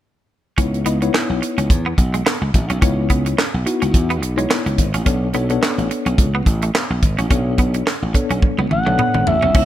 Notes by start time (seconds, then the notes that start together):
0.58 C#2 B3 C#4 D#4 E4 C#5, kick, closed hi-hat
0.74 closed hi-hat
0.86 C#2 B3 D#4 E4 D#5, closed hi-hat
1.02 B3 D#4 E4 C#5, muted clean electric guitar stroke, closed hi-hat
1.14 C#4, snare, clap
1.30 B1
1.42 muted clean electric guitar stroke, closed hi-hat
1.57 C#2 C#4, closed hi-hat
1.70 E2, kick, closed hi-hat
1.86 B3
1.98 B1, muted clean electric guitar stroke, kick, closed hi-hat
2.14 G#3, closed hi-hat
2.26 B3, snare, clap
2.41 C#2, muted clean electric guitar stroke
2.54 A1, kick, closed hi-hat
2.70 B1 C#4, closed hi-hat
2.82 C#2 B3 C#4 D#4 E4 C#5, kick, closed hi-hat
3.10 C#2 B3, kick, closed hi-hat
3.26 muted clean electric guitar stroke, closed hi-hat
3.38 C#4, snare, clap
3.54 B1
3.66 B3 D#4 E4 F#4, muted clean electric guitar stroke, closed hi-hat
3.82 C#2 C#4, closed hi-hat
3.94 E2, kick, closed hi-hat
4.10 B3, closed hi-hat
4.22 B1, muted clean electric guitar stroke, closed hi-hat
4.37 G#3 B3 D#4 E4 C#5, closed hi-hat
4.50 B3, snare, clap
4.66 C#2, muted clean electric guitar stroke, closed hi-hat
4.78 G#1, kick, closed hi-hat
4.94 A1 C#4, closed hi-hat
5.05 B1 B3 C#4 D4 A4 C#5, kick, closed hi-hat
5.33 B1 B3 D4 A4 C#5, closed hi-hat
5.49 B3 D4 A4 C#5, muted clean electric guitar stroke, closed hi-hat
5.63 C#4, snare, clap
5.78 A1, closed hi-hat
5.91 muted clean electric guitar stroke, closed hi-hat
6.06 B1 C#4, closed hi-hat
6.18 C#2, kick, closed hi-hat
6.35 B3
6.46 A1, muted clean electric guitar stroke, kick, closed hi-hat
6.62 A3, closed hi-hat
6.75 B3, snare, clap
6.90 B1, muted clean electric guitar stroke
7.03 G#1, kick, closed hi-hat
7.18 A1 C#4, closed hi-hat
7.30 B1 B3 C#4 D4 A4 C#5, kick, closed hi-hat
7.58 B1 B3, kick, closed hi-hat
7.74 muted clean electric guitar stroke, closed hi-hat
7.87 C#4, snare, clap
8.02 A1
8.14 B3 D4 A4 C#5, muted clean electric guitar stroke, kick, closed hi-hat
8.30 B1 C#4, closed hi-hat
8.42 kick, high tom
8.58 C#2 B3, high tom
8.70 A1 F#5, muted clean electric guitar stroke, mid tom
8.86 B1 A3 B3 D4 A4 C#5, mid tom
8.99 B3, mid tom
9.14 G#1, muted clean electric guitar stroke, mid tom
9.27 A1 E5, floor tom
9.42 B1 C#4, floor tom
9.54 C#2 B3 C#4 D#4 E4 C#5, kick, crash